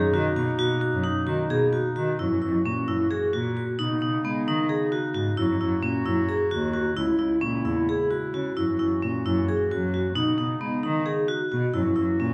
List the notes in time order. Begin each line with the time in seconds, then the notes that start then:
Already playing: B2 A#3 D#4
0.13 D#3 F#4
0.36 B2 F#4
0.59 B2 F#4
0.81 F#4
0.93 F#2
1.04 D#4
1.27 D#3 F#4
1.50 B2 G#4
1.73 F#4
1.96 D#3 F#4
2.19 F#2 E3 A#3 E4 F#4
2.31 F#2
2.42 F#2 E4
2.65 A#2 C#4
2.88 F#2 E4
3.11 G#4
3.33 A#2 F#4
3.57 F#4
3.79 B2 C#3 B3 D#4
3.91 B2
4.02 B2 D#4
4.24 G#3 B3
4.47 D#3 D#4
4.69 G#4
4.92 F#4
5.14 G#2 F#4
5.37 F#2 A#3 E4 F#4
5.49 F#2
5.61 F#2 E4
5.82 A#2 C#4
6.06 F#2 E4
6.29 G#4
6.51 D#2 F#4
6.74 F#4
6.96 C#2 C#3 G#3 E4
7.10 C#2
7.19 C#2 E4
7.41 A#2 C#4
7.65 E2 E4
7.89 G#4
8.11 F#4
8.34 C#3 F#4
8.55 F#2 E3 A#3 E4 F#4
8.69 F#2
8.79 F#2 E4
9.02 A#2 C#4
9.26 F#2 E4
9.48 G#4
9.71 F#2 F#4
9.94 F#4
10.14 B2 C#3 B3 D#4
10.27 B2
10.38 B2 D#4
10.61 G#3 B3
10.83 D#3 D#4
11.06 G#4
11.28 F#4
11.52 B2 F#4
11.74 F#2 E3 A#3 E4 F#4
11.85 F#2
11.96 F#2 E4
12.20 A#2 C#4